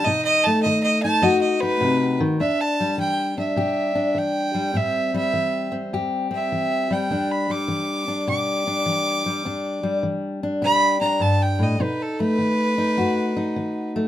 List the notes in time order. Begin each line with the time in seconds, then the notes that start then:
0.05 B2 D#4 D#5
0.25 D#5
0.44 A3 A5
0.63 D#3 D#5
0.83 D#5
1.02 D#4 A5
1.22 F#2 F#4 D#5
1.41 D#5
1.61 D#4 B4
1.81 C3
2.20 D#3
2.40 E2 D4 E5
2.60 A5
2.80 G3
2.98 E3 G5
3.38 D4 E5
3.56 B2 G4
3.95 D4
4.15 E3 G5
4.55 G3
4.74 A2 C4 E5
5.14 G3 E5
5.33 E3
5.72 C4
5.93 E2 G4
6.31 C4
6.35 E5
6.52 E3
6.91 G3 G5
7.11 E2 D4
7.31 B5
7.50 G3 D6
7.68 E3
8.08 D4
8.28 B2 G4 D6
8.67 D4
8.86 E3
9.26 G3
9.45 E2 D4
9.83 G3
10.03 E3
10.43 D4
10.62 B2 G4 B5
11.01 D4 A#5
11.20 G2 A5
11.42 G5
11.59 A2 D#5
11.80 B2 D#4 B4
12.02 A4
12.20 A3 B4
12.38 D#3
12.78 D#4
12.97 F#2 F#4
13.37 D#4
13.56 D#3
13.96 A3